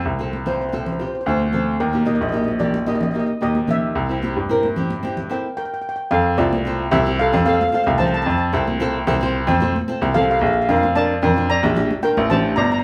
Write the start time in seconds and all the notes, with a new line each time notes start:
Already playing: G5
0.05 C2
0.19 C4 F4 A4
0.33 high conga
0.46 C4 F4 C5, low conga
0.54 C5
0.61 C5
0.69 C4 F4 C5
0.73 A4 C5, high conga
0.85 C5, low conga
0.93 C5
0.99 C4 F4 G4 C5
1.07 C5
1.15 C5
1.21 C5
1.26 D2 C4 F4 A4
1.30 C5
1.37 C5, high conga
1.52 C4 F4 A4, low conga
1.80 D#2 A#4
1.93 A#3 D#4 G4
2.05 A#3 D#4 G4 D#5, high conga
2.15 D#5
2.21 A#1 D#5
2.29 A#3 D#4 D#5
2.34 G4 D#5
2.44 D#5
2.48 high conga
2.59 A#3 D#4 G4 D5, low conga
2.74 high conga
2.86 A#3 D#4 G4 D#5, high conga
2.95 D#5
3.01 D#5, low conga
3.11 A#3 D#4 D#5
3.16 G4
3.20 D#5
3.26 D#5
3.41 D#2 A#3 D#4 G4 D#5
3.55 high conga
3.67 A#3 D#4 G4 E5, low conga
3.95 C2
4.09 C4 E4 G4
4.22 C4 E4 G4, high conga
4.36 G2
4.49 C4 E4 A#4
4.63 high conga
4.76 C4 E4 G4, low conga
4.90 high conga
5.03 C4 E4 G4, high conga
5.17 low conga
5.29 C4 E4 A4 A#4 G5
5.57 A#4 G5
5.65 G5
5.74 G5
5.82 G5
5.89 G5
5.96 G5
6.11 F2 A4 F5
6.37 C2 C4 F4 A4 D5
6.53 high conga
6.65 C4 F4 A4
6.91 C2 C4 F4 G4 A4 E5, low conga
7.05 C4 F4 G4
7.19 A4 F5
7.32 F2 C4 F4 A4, low conga
7.45 C4 F4 A4 F5
7.53 F5
7.61 F5, high conga
7.68 C4 F5
7.73 F4 A4 F5
7.84 C2 F5
7.88 high conga
7.98 C4 F4 A4 C5 A5, low conga
8.07 A5
8.14 A5
8.22 F2 A5
8.30 A5
8.38 A5
8.53 C2 C4 F4 A4
8.68 high conga
8.80 C4 F4 A4
9.07 C2 C4 F4 A4, low conga
9.21 C4 F4 C5
9.47 F2 C4 F4 A4, low conga
9.60 C4 F4 A4, high conga
9.76 high conga
9.88 C4 F4 A4
10.01 C2, high conga
10.14 C4 F4 G4 A4 F5, low conga
10.22 F5
10.31 F5
10.39 A#1 F5
10.46 F5
10.53 F5
10.62 F5
10.69 F2 D4 F4 A#4 F5
10.76 F5
10.83 F5, high conga
10.95 D4 F4 A#4 D5 A5
11.22 F2 D4 F4 A#4, low conga
11.36 D4 F4 A#4
11.50 D5 A#5
11.63 A#1 D4 F4 G4, low conga
11.75 D4 F4 G4, high conga
11.91 high conga
12.02 D4 F4 A#4 G5
12.17 A1, high conga
12.30 D4 F4 G4 C5 A5, low conga
12.56 G1 D5 A#5
12.64 A#5
12.72 A#5
12.79 A#5